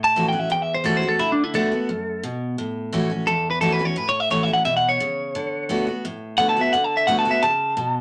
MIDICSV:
0, 0, Header, 1, 3, 480
1, 0, Start_track
1, 0, Key_signature, 3, "major"
1, 0, Tempo, 346220
1, 1661, Time_signature, 4, 2, 24, 8
1, 11104, End_track
2, 0, Start_track
2, 0, Title_t, "Clean electric guitar"
2, 0, Program_c, 0, 27
2, 57, Note_on_c, 0, 81, 106
2, 369, Note_off_c, 0, 81, 0
2, 395, Note_on_c, 0, 79, 75
2, 547, Note_off_c, 0, 79, 0
2, 547, Note_on_c, 0, 76, 76
2, 699, Note_off_c, 0, 76, 0
2, 717, Note_on_c, 0, 79, 80
2, 861, Note_off_c, 0, 79, 0
2, 861, Note_on_c, 0, 76, 94
2, 1016, Note_off_c, 0, 76, 0
2, 1032, Note_on_c, 0, 72, 88
2, 1182, Note_off_c, 0, 72, 0
2, 1187, Note_on_c, 0, 69, 94
2, 1339, Note_off_c, 0, 69, 0
2, 1342, Note_on_c, 0, 72, 87
2, 1497, Note_off_c, 0, 72, 0
2, 1505, Note_on_c, 0, 69, 91
2, 1658, Note_off_c, 0, 69, 0
2, 1658, Note_on_c, 0, 64, 101
2, 1814, Note_off_c, 0, 64, 0
2, 1830, Note_on_c, 0, 62, 90
2, 1990, Note_off_c, 0, 62, 0
2, 1990, Note_on_c, 0, 64, 77
2, 2141, Note_off_c, 0, 64, 0
2, 2149, Note_on_c, 0, 69, 98
2, 3076, Note_off_c, 0, 69, 0
2, 4532, Note_on_c, 0, 69, 97
2, 4847, Note_off_c, 0, 69, 0
2, 4859, Note_on_c, 0, 71, 96
2, 4999, Note_off_c, 0, 71, 0
2, 5005, Note_on_c, 0, 69, 102
2, 5163, Note_off_c, 0, 69, 0
2, 5163, Note_on_c, 0, 71, 84
2, 5339, Note_off_c, 0, 71, 0
2, 5339, Note_on_c, 0, 73, 88
2, 5508, Note_off_c, 0, 73, 0
2, 5508, Note_on_c, 0, 71, 94
2, 5660, Note_off_c, 0, 71, 0
2, 5668, Note_on_c, 0, 73, 89
2, 5824, Note_off_c, 0, 73, 0
2, 5824, Note_on_c, 0, 76, 90
2, 5972, Note_off_c, 0, 76, 0
2, 5977, Note_on_c, 0, 73, 80
2, 6145, Note_off_c, 0, 73, 0
2, 6145, Note_on_c, 0, 76, 85
2, 6281, Note_off_c, 0, 76, 0
2, 6287, Note_on_c, 0, 78, 77
2, 6444, Note_off_c, 0, 78, 0
2, 6450, Note_on_c, 0, 76, 81
2, 6602, Note_off_c, 0, 76, 0
2, 6607, Note_on_c, 0, 78, 93
2, 6769, Note_off_c, 0, 78, 0
2, 6774, Note_on_c, 0, 73, 93
2, 8174, Note_off_c, 0, 73, 0
2, 8843, Note_on_c, 0, 78, 114
2, 8993, Note_off_c, 0, 78, 0
2, 8998, Note_on_c, 0, 81, 91
2, 9164, Note_off_c, 0, 81, 0
2, 9167, Note_on_c, 0, 76, 84
2, 9327, Note_on_c, 0, 78, 112
2, 9329, Note_off_c, 0, 76, 0
2, 9487, Note_off_c, 0, 78, 0
2, 9487, Note_on_c, 0, 81, 85
2, 9648, Note_off_c, 0, 81, 0
2, 9662, Note_on_c, 0, 76, 90
2, 9802, Note_on_c, 0, 78, 92
2, 9816, Note_off_c, 0, 76, 0
2, 9958, Note_off_c, 0, 78, 0
2, 9964, Note_on_c, 0, 81, 83
2, 10126, Note_off_c, 0, 81, 0
2, 10132, Note_on_c, 0, 76, 87
2, 10291, Note_off_c, 0, 76, 0
2, 10296, Note_on_c, 0, 81, 107
2, 11104, Note_off_c, 0, 81, 0
2, 11104, End_track
3, 0, Start_track
3, 0, Title_t, "Steel-string acoustic guitar"
3, 0, Program_c, 1, 25
3, 0, Note_on_c, 1, 45, 76
3, 219, Note_on_c, 1, 52, 72
3, 225, Note_on_c, 1, 57, 88
3, 239, Note_on_c, 1, 61, 88
3, 241, Note_on_c, 1, 66, 96
3, 432, Note_off_c, 1, 66, 0
3, 449, Note_on_c, 1, 66, 65
3, 450, Note_off_c, 1, 52, 0
3, 450, Note_off_c, 1, 61, 0
3, 453, Note_off_c, 1, 57, 0
3, 467, Note_on_c, 1, 61, 51
3, 653, Note_off_c, 1, 45, 0
3, 685, Note_off_c, 1, 66, 0
3, 690, Note_on_c, 1, 40, 93
3, 694, Note_off_c, 1, 61, 0
3, 1161, Note_on_c, 1, 52, 95
3, 1170, Note_on_c, 1, 57, 89
3, 1183, Note_on_c, 1, 61, 93
3, 1185, Note_on_c, 1, 66, 99
3, 1392, Note_off_c, 1, 66, 0
3, 1401, Note_off_c, 1, 52, 0
3, 1406, Note_off_c, 1, 57, 0
3, 1409, Note_on_c, 1, 66, 62
3, 1412, Note_off_c, 1, 61, 0
3, 1429, Note_on_c, 1, 61, 57
3, 1607, Note_off_c, 1, 40, 0
3, 1645, Note_off_c, 1, 66, 0
3, 1653, Note_on_c, 1, 50, 86
3, 1655, Note_off_c, 1, 61, 0
3, 2114, Note_off_c, 1, 50, 0
3, 2130, Note_on_c, 1, 50, 99
3, 2142, Note_on_c, 1, 57, 92
3, 2152, Note_on_c, 1, 59, 93
3, 2161, Note_on_c, 1, 66, 88
3, 2360, Note_off_c, 1, 66, 0
3, 2366, Note_off_c, 1, 50, 0
3, 2372, Note_off_c, 1, 57, 0
3, 2377, Note_off_c, 1, 59, 0
3, 2377, Note_on_c, 1, 66, 59
3, 2398, Note_on_c, 1, 59, 48
3, 2609, Note_off_c, 1, 66, 0
3, 2620, Note_off_c, 1, 59, 0
3, 2620, Note_on_c, 1, 42, 83
3, 3076, Note_off_c, 1, 42, 0
3, 3098, Note_on_c, 1, 47, 94
3, 3556, Note_off_c, 1, 47, 0
3, 3580, Note_on_c, 1, 45, 85
3, 4055, Note_on_c, 1, 52, 90
3, 4061, Note_on_c, 1, 57, 96
3, 4073, Note_on_c, 1, 61, 92
3, 4073, Note_on_c, 1, 66, 80
3, 4275, Note_off_c, 1, 66, 0
3, 4289, Note_off_c, 1, 52, 0
3, 4292, Note_off_c, 1, 57, 0
3, 4292, Note_on_c, 1, 66, 62
3, 4297, Note_off_c, 1, 61, 0
3, 4316, Note_on_c, 1, 61, 56
3, 4493, Note_off_c, 1, 45, 0
3, 4527, Note_off_c, 1, 66, 0
3, 4539, Note_off_c, 1, 61, 0
3, 4540, Note_on_c, 1, 40, 86
3, 5009, Note_on_c, 1, 52, 81
3, 5013, Note_on_c, 1, 57, 93
3, 5024, Note_on_c, 1, 61, 82
3, 5028, Note_on_c, 1, 66, 108
3, 5239, Note_off_c, 1, 66, 0
3, 5246, Note_off_c, 1, 52, 0
3, 5248, Note_off_c, 1, 57, 0
3, 5253, Note_off_c, 1, 61, 0
3, 5256, Note_on_c, 1, 66, 68
3, 5277, Note_on_c, 1, 61, 64
3, 5453, Note_off_c, 1, 40, 0
3, 5489, Note_off_c, 1, 66, 0
3, 5489, Note_on_c, 1, 45, 82
3, 5500, Note_off_c, 1, 61, 0
3, 5965, Note_on_c, 1, 52, 81
3, 5974, Note_on_c, 1, 57, 95
3, 5980, Note_on_c, 1, 61, 84
3, 5991, Note_on_c, 1, 66, 88
3, 6194, Note_off_c, 1, 66, 0
3, 6204, Note_off_c, 1, 52, 0
3, 6208, Note_off_c, 1, 57, 0
3, 6211, Note_off_c, 1, 61, 0
3, 6211, Note_on_c, 1, 66, 55
3, 6233, Note_on_c, 1, 61, 46
3, 6407, Note_off_c, 1, 45, 0
3, 6446, Note_off_c, 1, 66, 0
3, 6448, Note_on_c, 1, 47, 88
3, 6458, Note_off_c, 1, 61, 0
3, 6911, Note_off_c, 1, 47, 0
3, 6936, Note_on_c, 1, 49, 84
3, 7395, Note_off_c, 1, 49, 0
3, 7418, Note_on_c, 1, 50, 82
3, 7873, Note_off_c, 1, 50, 0
3, 7889, Note_on_c, 1, 50, 89
3, 7895, Note_on_c, 1, 57, 86
3, 7905, Note_on_c, 1, 59, 94
3, 7909, Note_on_c, 1, 66, 96
3, 8118, Note_off_c, 1, 66, 0
3, 8125, Note_off_c, 1, 50, 0
3, 8128, Note_off_c, 1, 57, 0
3, 8133, Note_off_c, 1, 59, 0
3, 8135, Note_on_c, 1, 66, 63
3, 8165, Note_on_c, 1, 59, 46
3, 8368, Note_off_c, 1, 66, 0
3, 8383, Note_off_c, 1, 59, 0
3, 8385, Note_on_c, 1, 45, 100
3, 8845, Note_on_c, 1, 50, 91
3, 8854, Note_on_c, 1, 57, 89
3, 8857, Note_on_c, 1, 59, 103
3, 8866, Note_on_c, 1, 66, 105
3, 9083, Note_off_c, 1, 50, 0
3, 9086, Note_off_c, 1, 66, 0
3, 9088, Note_off_c, 1, 57, 0
3, 9089, Note_off_c, 1, 59, 0
3, 9102, Note_on_c, 1, 66, 71
3, 9125, Note_on_c, 1, 59, 48
3, 9294, Note_off_c, 1, 45, 0
3, 9331, Note_off_c, 1, 66, 0
3, 9338, Note_on_c, 1, 50, 89
3, 9343, Note_off_c, 1, 59, 0
3, 9792, Note_off_c, 1, 50, 0
3, 9809, Note_on_c, 1, 50, 89
3, 9819, Note_on_c, 1, 57, 100
3, 9821, Note_on_c, 1, 59, 102
3, 9833, Note_on_c, 1, 66, 95
3, 10039, Note_off_c, 1, 66, 0
3, 10044, Note_off_c, 1, 50, 0
3, 10050, Note_off_c, 1, 57, 0
3, 10050, Note_off_c, 1, 59, 0
3, 10055, Note_on_c, 1, 66, 64
3, 10084, Note_on_c, 1, 59, 53
3, 10288, Note_off_c, 1, 66, 0
3, 10295, Note_on_c, 1, 49, 90
3, 10302, Note_off_c, 1, 59, 0
3, 10753, Note_off_c, 1, 49, 0
3, 10769, Note_on_c, 1, 47, 85
3, 11104, Note_off_c, 1, 47, 0
3, 11104, End_track
0, 0, End_of_file